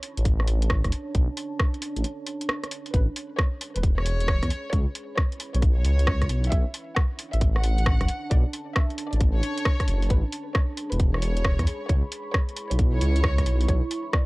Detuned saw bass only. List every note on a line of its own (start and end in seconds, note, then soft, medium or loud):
0.17 0.82 A1 medium
0.85 0.91 F#1 medium
1.15 1.28 B1 loud
1.96 2.04 A1 medium
2.94 3.07 A1 loud
3.76 4.40 E1 medium
4.43 4.50 E2 loud
4.73 4.86 C#2 loud
5.55 5.83 B1 medium
5.85 6.28 C#2 loud
6.30 6.50 B1 loud
6.52 6.65 B1 loud
7.34 7.98 A1 medium
8.01 8.08 F#1 loud
8.31 8.44 B1 loud
9.13 9.42 A1 medium
9.88 10.08 F#1 loud
10.10 10.23 A1 loud
10.92 11.57 E1 medium
11.59 11.66 E2 loud
11.89 12.02 C#2 loud
12.71 13.00 B1 medium
13.01 13.45 C#2 medium
13.46 13.67 B1 loud
13.68 13.81 B1 loud